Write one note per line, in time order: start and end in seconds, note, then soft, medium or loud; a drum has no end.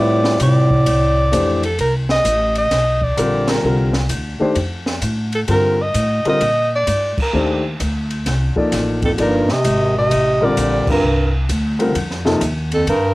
0.00 0.39 A2 medium
0.00 0.40 A2 medium
0.00 0.65 G3 medium
0.00 0.65 C4 medium
0.00 0.65 F4 medium
0.00 0.65 B4 medium
0.00 0.42 D5 loud
0.00 0.65 E5 medium
0.24 snare medium
0.40 1.59 A2 medium
0.40 0.85 C3 loud
0.40 1.61 D5 loud
0.40 hi-hat pedal medium
0.40 ride medium
0.70 kick medium
0.86 1.31 C2 medium
0.86 ride medium
1.32 1.78 F2 medium
1.32 1.60 E3 medium
1.32 1.60 A3 medium
1.32 1.61 D4 medium
1.32 1.61 G4 medium
1.32 1.61 C5 medium
1.32 hi-hat pedal medium
1.32 ride medium
1.63 1.79 A4 medium
1.63 ride medium
1.79 2.24 C2 medium
1.79 1.94 A#4 medium
1.79 ride medium
2.09 2.54 D#5 loud
2.09 snare medium
2.24 2.70 A1 medium
2.24 hi-hat pedal medium
2.24 ride medium
2.55 3.05 D#5 loud
2.55 ride soft
2.71 3.16 B1 medium
2.71 snare soft
2.71 ride medium
3.02 3.51 D5 loud
3.02 kick medium
3.17 3.62 A#1 medium
3.17 3.62 D3 medium
3.17 3.62 G3 medium
3.17 3.63 C4 medium
3.17 3.63 F4 medium
3.17 3.64 A#4 medium
3.17 hi-hat pedal medium
3.17 ride medium
3.48 3.95 A#4 medium
3.48 snare medium
3.48 ride medium
3.63 4.08 C2 medium
3.63 3.91 D3 medium
3.63 3.91 G3 medium
3.63 3.92 C4 medium
3.63 3.92 F4 medium
3.63 3.92 A#4 medium
3.93 snare medium
4.09 4.38 D2 medium
4.09 hi-hat pedal medium
4.09 ride medium
4.40 4.54 D#3 medium
4.40 4.55 A3 medium
4.40 4.55 D4 medium
4.40 4.55 G4 medium
4.40 4.55 C5 medium
4.40 muted upright bass stroke soft
4.55 5.01 F2 medium
4.55 ride medium
4.86 snare medium
5.01 5.47 A2 medium
5.01 hi-hat pedal medium
5.01 ride medium
5.32 5.42 A4 medium
5.32 ride soft
5.48 5.93 G2 medium
5.48 5.76 D3 medium
5.48 5.76 G3 medium
5.48 5.76 C4 medium
5.48 5.77 F4 medium
5.48 5.77 A#4 medium
5.48 5.84 A#4 loud
5.48 ride medium
5.82 6.27 D#5 loud
5.94 6.23 A2 medium
5.94 hi-hat pedal medium
5.94 ride medium
6.25 6.40 D3 medium
6.25 6.40 G3 medium
6.25 6.40 C4 medium
6.25 6.40 F4 medium
6.25 6.40 A#4 medium
6.25 muted upright bass stroke soft
6.25 ride soft
6.29 6.70 D#5 loud
6.41 6.86 A#2 medium
6.41 ride medium
6.76 7.17 D5 loud
6.87 7.15 G2 medium
6.87 hi-hat pedal medium
6.87 ride medium
7.17 muted upright bass stroke soft
7.17 kick medium
7.17 crash medium
7.22 7.63 A#4 medium
7.33 7.78 D#2 medium
7.33 7.61 D#3 medium
7.33 7.61 A3 medium
7.33 7.61 D4 medium
7.33 7.62 G4 medium
7.33 7.62 C5 medium
7.80 8.25 D2 medium
7.80 hi-hat pedal medium
7.80 ride medium
8.10 ride soft
8.26 8.54 C2 medium
8.26 snare soft
8.26 ride medium
8.56 9.15 F3 medium
8.56 9.15 A#3 medium
8.56 9.15 D#4 medium
8.56 9.15 A4 medium
8.56 9.16 D5 medium
8.56 kick medium
8.72 9.17 A1 medium
8.72 snare soft
8.72 hi-hat pedal medium
8.72 ride medium
9.02 9.11 F2 medium
9.02 9.12 A4 medium
9.02 kick medium
9.02 ride soft
9.18 9.47 G1 medium
9.18 9.54 G2 medium
9.18 9.46 F3 medium
9.18 9.46 A#3 medium
9.18 9.46 D#4 medium
9.18 9.46 A4 medium
9.18 9.54 A#4 loud
9.18 9.47 D5 medium
9.18 ride medium
9.48 muted upright bass stroke soft
9.48 snare medium
9.52 9.97 C3 medium
9.52 9.97 D#5 loud
9.65 10.09 G#1 medium
9.65 hi-hat pedal medium
9.65 ride medium
9.98 10.45 C3 medium
9.98 10.46 D#5 loud
10.11 10.56 A1 medium
10.11 ride medium
10.41 10.88 A#2 medium
10.41 11.00 D3 medium
10.41 11.00 G3 medium
10.41 11.00 C4 medium
10.41 11.00 F4 medium
10.41 11.01 A#4 medium
10.41 10.89 D5 loud
10.57 10.85 A#1 medium
10.57 hi-hat pedal medium
10.57 ride medium
10.87 11.32 G2 medium
10.87 muted upright bass stroke soft
10.87 kick medium
10.87 crash medium
10.91 11.32 A#4 medium
11.02 11.48 C2 medium
11.49 11.94 D2 medium
11.49 hi-hat pedal medium
11.49 ride medium
11.79 11.93 D3 medium
11.79 11.94 G3 medium
11.79 11.94 C4 medium
11.79 11.94 F4 medium
11.79 11.95 A#4 medium
11.79 ride soft
11.95 12.40 F2 medium
11.95 ride medium
12.11 snare soft
12.25 12.40 C3 medium
12.25 12.40 F3 medium
12.25 12.40 A#3 medium
12.25 12.40 D#4 medium
12.25 12.40 A4 medium
12.25 snare soft
12.40 12.86 D#2 medium
12.40 hi-hat pedal medium
12.40 ride medium
12.72 12.87 F2 medium
12.72 12.88 A4 medium
12.72 ride soft
12.87 13.14 G2 medium
12.87 13.14 A#4 loud
12.87 ride medium